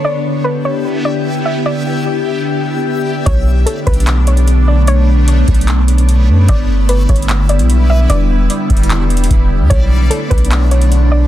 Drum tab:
HH |------------------------------------------------|------------------------------------------------|x-----------x-----x-x-x-x-----x--x--x-----------|x-----------x-----x-x-x-x-----x--x--x-----------|
CP |------------------------------------------------|------------------------------------------------|------------------------x-----------------------|------------------------x-----------------------|
BD |------------------------------------------------|------------------------------------------------|o-----------------o-----------------------------|------------------o-----------------------------|

HH |x-----------x-----x-x-x-x-----x--x--x-----------|x-----------x-----x-x-x-x-----x-x-x-x-----------|x-----------x-----x-x-x-x-----x--x--x-----------|
CP |------------------------x-----------------------|------------------------x-----------------------|------------------------x-----------------------|
BD |o-----------------o-----------------------------|------------------o-----------------o-----------|o-----------------o-----------------------------|